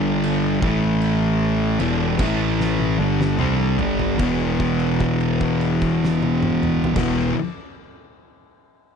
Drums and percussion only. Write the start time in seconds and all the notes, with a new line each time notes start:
0.24 crash
0.62 kick
1.01 crash
1.80 crash
2.19 kick, crash
2.60 snare
2.79 high tom
3.21 snare
3.39 mid tom
3.79 floor tom
3.99 floor tom
4.19 kick, crash
4.60 kick, crash
4.80 crash
5.00 kick, crash
5.20 crash
5.40 kick, crash
5.61 crash
5.82 kick, crash
6.04 snare
6.22 high tom
6.42 mid tom
6.63 mid tom
6.84 floor tom
6.96 kick, snare, crash